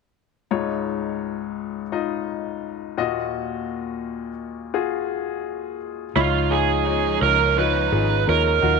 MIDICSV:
0, 0, Header, 1, 5, 480
1, 0, Start_track
1, 0, Tempo, 706048
1, 343, Time_signature, 4, 2, 24, 8
1, 5981, End_track
2, 0, Start_track
2, 0, Title_t, "Lead electric guitar"
2, 0, Program_c, 0, 29
2, 4193, Note_on_c, 0, 65, 67
2, 4426, Note_on_c, 0, 68, 77
2, 4435, Note_off_c, 0, 65, 0
2, 4877, Note_off_c, 0, 68, 0
2, 4913, Note_on_c, 0, 70, 85
2, 5155, Note_off_c, 0, 70, 0
2, 5158, Note_on_c, 0, 71, 75
2, 5635, Note_off_c, 0, 71, 0
2, 5638, Note_on_c, 0, 70, 83
2, 5981, Note_off_c, 0, 70, 0
2, 5981, End_track
3, 0, Start_track
3, 0, Title_t, "Grand piano"
3, 0, Program_c, 1, 0
3, 345, Note_on_c, 1, 63, 58
3, 347, Note_on_c, 1, 73, 72
3, 348, Note_on_c, 1, 44, 52
3, 349, Note_on_c, 1, 37, 57
3, 349, Note_on_c, 1, 65, 55
3, 455, Control_c, 1, 64, 127
3, 1237, Note_off_c, 1, 63, 0
3, 1238, Note_off_c, 1, 73, 0
3, 1239, Note_off_c, 1, 65, 0
3, 1306, Note_on_c, 1, 63, 60
3, 1307, Note_on_c, 1, 65, 54
3, 1308, Note_on_c, 1, 75, 62
3, 1998, Note_off_c, 1, 44, 0
3, 1999, Note_off_c, 1, 37, 0
3, 2012, Note_off_c, 1, 65, 0
3, 2017, Note_off_c, 1, 75, 0
3, 2022, Note_on_c, 1, 65, 62
3, 2023, Note_on_c, 1, 46, 52
3, 2024, Note_off_c, 1, 63, 0
3, 2024, Note_on_c, 1, 66, 57
3, 2026, Note_on_c, 1, 39, 54
3, 2027, Note_on_c, 1, 75, 74
3, 2031, Control_c, 1, 64, 0
3, 2149, Control_c, 1, 64, 127
3, 2916, Note_off_c, 1, 65, 0
3, 2917, Note_off_c, 1, 66, 0
3, 2918, Note_off_c, 1, 75, 0
3, 3221, Note_on_c, 1, 65, 64
3, 3223, Note_on_c, 1, 66, 56
3, 3225, Note_on_c, 1, 68, 67
3, 3916, Note_off_c, 1, 46, 0
3, 3917, Note_off_c, 1, 39, 0
3, 4115, Note_off_c, 1, 65, 0
3, 4116, Note_off_c, 1, 66, 0
3, 4117, Note_off_c, 1, 68, 0
3, 4185, Note_on_c, 1, 63, 76
3, 4186, Note_on_c, 1, 65, 72
3, 4187, Note_on_c, 1, 73, 88
3, 4188, Note_on_c, 1, 44, 52
3, 4190, Control_c, 1, 64, 0
3, 4311, Control_c, 1, 64, 127
3, 4407, Note_off_c, 1, 63, 0
3, 4408, Note_off_c, 1, 65, 0
3, 4408, Note_off_c, 1, 73, 0
3, 4420, Note_on_c, 1, 63, 59
3, 4423, Note_on_c, 1, 73, 63
3, 4424, Note_on_c, 1, 65, 55
3, 4645, Note_off_c, 1, 63, 0
3, 4646, Note_off_c, 1, 65, 0
3, 4646, Note_off_c, 1, 73, 0
3, 4665, Note_on_c, 1, 65, 51
3, 4666, Note_on_c, 1, 63, 57
3, 4668, Note_on_c, 1, 73, 62
3, 4878, Note_off_c, 1, 44, 0
3, 4887, Note_off_c, 1, 65, 0
3, 4888, Note_off_c, 1, 63, 0
3, 4888, Note_off_c, 1, 73, 0
3, 4900, Note_on_c, 1, 63, 52
3, 4904, Note_on_c, 1, 65, 56
3, 4906, Note_on_c, 1, 73, 56
3, 5125, Note_off_c, 1, 63, 0
3, 5126, Note_off_c, 1, 65, 0
3, 5127, Note_off_c, 1, 73, 0
3, 5146, Note_on_c, 1, 63, 69
3, 5150, Note_on_c, 1, 65, 60
3, 5151, Note_on_c, 1, 73, 69
3, 5367, Note_off_c, 1, 63, 0
3, 5369, Note_off_c, 1, 65, 0
3, 5370, Note_off_c, 1, 73, 0
3, 5387, Note_on_c, 1, 68, 57
3, 5388, Note_on_c, 1, 63, 52
3, 5388, Note_on_c, 1, 65, 53
3, 5608, Note_off_c, 1, 68, 0
3, 5609, Note_off_c, 1, 63, 0
3, 5609, Note_off_c, 1, 65, 0
3, 5625, Note_on_c, 1, 63, 57
3, 5627, Note_on_c, 1, 65, 53
3, 5632, Note_on_c, 1, 73, 58
3, 5847, Note_off_c, 1, 63, 0
3, 5848, Note_off_c, 1, 65, 0
3, 5851, Note_off_c, 1, 73, 0
3, 5860, Note_on_c, 1, 63, 60
3, 5861, Note_on_c, 1, 46, 49
3, 5862, Note_on_c, 1, 65, 54
3, 5865, Note_on_c, 1, 66, 67
3, 5871, Control_c, 1, 64, 0
3, 5972, Control_c, 1, 64, 127
3, 5981, Note_off_c, 1, 46, 0
3, 5981, Note_off_c, 1, 63, 0
3, 5981, Note_off_c, 1, 65, 0
3, 5981, Note_off_c, 1, 66, 0
3, 5981, End_track
4, 0, Start_track
4, 0, Title_t, "String section"
4, 0, Program_c, 2, 48
4, 4184, Note_on_c, 2, 63, 66
4, 4185, Note_on_c, 2, 61, 58
4, 4188, Note_on_c, 2, 53, 69
4, 5846, Note_off_c, 2, 63, 0
4, 5847, Note_off_c, 2, 61, 0
4, 5848, Note_off_c, 2, 53, 0
4, 5859, Note_on_c, 2, 63, 58
4, 5860, Note_on_c, 2, 54, 61
4, 5861, Note_on_c, 2, 77, 70
4, 5981, Note_off_c, 2, 54, 0
4, 5981, Note_off_c, 2, 63, 0
4, 5981, Note_off_c, 2, 77, 0
4, 5981, End_track
5, 0, Start_track
5, 0, Title_t, "Fingered electric bass"
5, 0, Program_c, 3, 33
5, 4186, Note_on_c, 3, 37, 84
5, 4877, Note_off_c, 3, 37, 0
5, 4905, Note_on_c, 3, 37, 73
5, 5357, Note_off_c, 3, 37, 0
5, 5386, Note_on_c, 3, 32, 71
5, 5608, Note_off_c, 3, 32, 0
5, 5626, Note_on_c, 3, 39, 74
5, 5847, Note_off_c, 3, 39, 0
5, 5867, Note_on_c, 3, 39, 75
5, 5981, Note_off_c, 3, 39, 0
5, 5981, End_track
0, 0, End_of_file